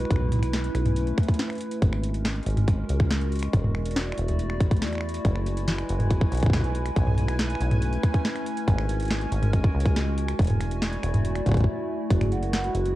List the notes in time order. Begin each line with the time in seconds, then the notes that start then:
Already playing: E4 B4
0.05 finger snap
0.11 B1 A3 C#4, finger snap, kick, closed hi-hat
0.16 finger snap
0.21 mid tom
0.25 mid tom
0.28 closed hi-hat, mid tom
0.32 mid tom
0.36 mid tom
0.39 finger snap, closed hi-hat, mid tom
0.53 snare, closed hi-hat
0.64 closed hi-hat
0.75 B1, finger snap, closed hi-hat
0.86 closed hi-hat, mid tom
0.96 closed hi-hat
1.07 closed hi-hat
1.18 finger snap, kick, closed hi-hat
1.23 closed hi-hat
1.28 kick, closed hi-hat
1.34 closed hi-hat
1.39 snare, closed hi-hat
1.50 finger snap, closed hi-hat
1.53 closed hi-hat
1.55 closed hi-hat
1.58 closed hi-hat
1.61 closed hi-hat
1.71 closed hi-hat
1.82 G#1 G#3 C#4 F#4 A#4, kick, closed hi-hat
1.93 finger snap
2.03 closed hi-hat
2.14 closed hi-hat
2.25 finger snap, snare, closed hi-hat
2.36 closed hi-hat
2.43 closed hi-hat
2.46 G#1, closed hi-hat
2.50 closed hi-hat
2.57 closed hi-hat, mid tom
2.68 finger snap, kick, closed hi-hat
2.89 C#2, closed hi-hat
3.00 finger snap, kick
3.11 snare, closed hi-hat
3.21 closed hi-hat
3.32 closed hi-hat
3.36 closed hi-hat
3.39 finger snap, closed hi-hat
3.43 closed hi-hat
3.53 E1 A3 E4 D5, kick, closed hi-hat
3.64 mid tom
3.75 finger snap
3.86 closed hi-hat
3.91 closed hi-hat
3.96 snare, closed hi-hat
4.12 finger snap
4.18 E1, closed hi-hat
4.28 closed hi-hat, mid tom
4.39 closed hi-hat
4.50 finger snap
4.61 A1, kick, closed hi-hat
4.71 kick, closed hi-hat
4.77 closed hi-hat
4.82 E2, snare, closed hi-hat
4.87 closed hi-hat
4.93 finger snap, closed hi-hat
4.95 finger snap
4.98 finger snap
5.01 finger snap
5.09 closed hi-hat
5.14 closed hi-hat
5.25 F#1 G#3 B4 G#5, kick, closed hi-hat
5.35 finger snap
5.46 closed hi-hat
5.57 closed hi-hat
5.68 snare, closed hi-hat
5.78 finger snap, closed hi-hat
5.89 F#1, closed hi-hat
6.00 closed hi-hat, mid tom
6.11 finger snap, kick, closed hi-hat
6.21 kick
6.32 B1, closed hi-hat
6.35 closed hi-hat
6.37 closed hi-hat
6.40 closed hi-hat
6.43 kick, closed hi-hat
6.46 kick
6.50 finger snap, kick, snare, closed hi-hat
6.53 kick
6.57 kick
6.61 kick, closed hi-hat
6.75 closed hi-hat
6.86 finger snap, closed hi-hat
6.96 B1 A3 C#4 B4, kick, closed hi-hat
7.07 mid tom
7.14 closed hi-hat, mid tom
7.21 mid tom
7.28 finger snap, closed hi-hat
7.39 snare, closed hi-hat
7.50 closed hi-hat
7.55 finger snap
7.60 B1, closed hi-hat
7.71 closed hi-hat, mid tom
7.82 closed hi-hat
7.93 closed hi-hat
8.03 finger snap, kick, closed hi-hat
8.14 kick, closed hi-hat
8.25 snare
8.36 finger snap, closed hi-hat
8.46 closed hi-hat
8.57 closed hi-hat
8.68 G#1 G#3 F#4 A#4, kick, closed hi-hat
8.78 finger snap
8.89 closed hi-hat
9.00 closed hi-hat
9.03 closed hi-hat
9.05 closed hi-hat
9.08 finger snap, snare, closed hi-hat
9.11 closed hi-hat
9.13 closed hi-hat
9.16 closed hi-hat
9.19 closed hi-hat
9.21 closed hi-hat
9.32 G#1, closed hi-hat
9.43 closed hi-hat, mid tom
9.53 kick, closed hi-hat
9.64 kick
9.75 C#2
9.80 closed hi-hat
9.86 kick, closed hi-hat
9.96 snare, closed hi-hat
10.18 closed hi-hat
10.28 finger snap, closed hi-hat
10.39 E1 A3 E4 F#4 D5, kick, closed hi-hat
10.42 closed hi-hat
10.44 closed hi-hat
10.47 closed hi-hat
10.50 closed hi-hat, mid tom
10.61 finger snap, closed hi-hat
10.71 closed hi-hat
10.82 snare, closed hi-hat
10.93 closed hi-hat
11.03 E1, finger snap, closed hi-hat
11.14 closed hi-hat, mid tom
11.25 closed hi-hat
11.36 finger snap, closed hi-hat
11.46 A1, kick, closed hi-hat
11.49 kick
11.52 kick
11.54 kick
11.57 kick, closed hi-hat
11.61 kick
11.64 kick
12.11 F#1 G#3 E4 F#4 B4, kick, closed hi-hat
12.21 G#4, finger snap, closed hi-hat, mid tom
12.32 F#5, closed hi-hat
12.43 A#4, closed hi-hat
12.53 F#5, snare, closed hi-hat
12.64 F#4, closed hi-hat
12.75 F#1 F#4, closed hi-hat
12.86 G#4, closed hi-hat